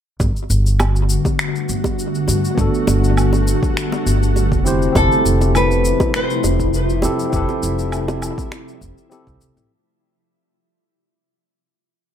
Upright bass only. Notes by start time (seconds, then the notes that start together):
0.20 G1
0.50 G1
1.69 G1
2.28 G2
2.58 G1
2.87 G1
4.06 G1
4.52 F1
4.95 F1
5.25 F1
6.44 F1
7.03 F2
7.33 F1
7.63 F1
8.81 F1
9.27 C2
9.41 C2
9.57 A1